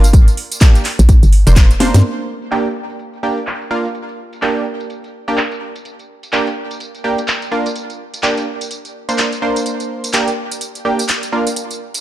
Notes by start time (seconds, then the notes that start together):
Already playing: G1
0.04 closed hi-hat, tambourine
0.13 kick, closed hi-hat, tambourine
0.28 closed hi-hat, tambourine
0.37 open hi-hat
0.52 closed hi-hat, tambourine
0.61 A#3 D4 G4, kick, clap, closed hi-hat, tambourine
0.75 closed hi-hat, tambourine
0.85 clap, open hi-hat
0.99 A#1, closed hi-hat, tambourine
1.09 kick, closed hi-hat, tambourine
1.23 G1, closed hi-hat, tambourine
1.33 open hi-hat
1.47 F1 A#3 D4 C5, closed hi-hat, tambourine
1.56 kick, clap, closed hi-hat, tambourine
1.71 closed hi-hat, tambourine
1.80 A#3 D4 C5, snare, open hi-hat
1.94 G2, snare, closed hi-hat, tambourine
2.19 tambourine
2.42 closed hi-hat, tambourine
2.51 A#3 D4 G4, clap
2.66 tambourine
2.90 closed hi-hat, tambourine
2.99 closed hi-hat, tambourine
3.13 closed hi-hat, tambourine
3.23 A#3 D4 G4
3.37 closed hi-hat, tambourine
3.47 clap, closed hi-hat, tambourine
3.61 closed hi-hat, tambourine
3.71 A#3 D4 F4
3.85 closed hi-hat, tambourine
3.95 closed hi-hat, tambourine
4.09 closed hi-hat, tambourine
4.33 closed hi-hat, tambourine
4.42 A#3 D4 G4, clap, closed hi-hat, tambourine
4.56 closed hi-hat, tambourine
4.80 closed hi-hat, tambourine
4.90 closed hi-hat, tambourine
5.04 closed hi-hat, tambourine
5.28 A#3 D4 G4, closed hi-hat, tambourine
5.37 clap, closed hi-hat, tambourine
5.52 closed hi-hat, tambourine
5.76 closed hi-hat, tambourine
5.85 closed hi-hat, tambourine
5.99 closed hi-hat, tambourine
6.23 closed hi-hat, tambourine
6.33 A#3 D4 G4, clap, closed hi-hat, tambourine
6.47 closed hi-hat, tambourine
6.71 closed hi-hat, tambourine
6.80 closed hi-hat, tambourine
6.95 closed hi-hat, tambourine
7.04 A#3 D4 G4
7.18 closed hi-hat, tambourine
7.28 clap, closed hi-hat, tambourine
7.42 closed hi-hat, tambourine
7.51 A#3 D4 F4
7.66 closed hi-hat, tambourine
7.76 closed hi-hat, tambourine
7.90 closed hi-hat, tambourine
8.14 closed hi-hat, tambourine
8.23 A#3 D4 G4, clap, closed hi-hat, tambourine
8.37 closed hi-hat, tambourine
8.61 closed hi-hat, tambourine
8.71 closed hi-hat, tambourine
8.85 closed hi-hat, tambourine
9.09 A#3 D4 C5, closed hi-hat, tambourine
9.18 clap, closed hi-hat, tambourine
9.33 closed hi-hat, tambourine
9.42 A#3 D4 C5
9.56 closed hi-hat, tambourine
9.66 closed hi-hat, tambourine
9.80 closed hi-hat, tambourine
10.04 closed hi-hat, tambourine
10.13 A#3 D4 G4, clap, closed hi-hat, tambourine
10.28 closed hi-hat, tambourine
10.52 closed hi-hat, tambourine
10.61 closed hi-hat, tambourine
10.75 closed hi-hat, tambourine
10.85 A#3 D4 G4
10.99 closed hi-hat, tambourine
11.09 clap, closed hi-hat, tambourine
11.23 closed hi-hat, tambourine
11.32 A#3 D4 F4
11.47 closed hi-hat, tambourine
11.56 closed hi-hat, tambourine
11.71 closed hi-hat, tambourine
11.94 closed hi-hat, tambourine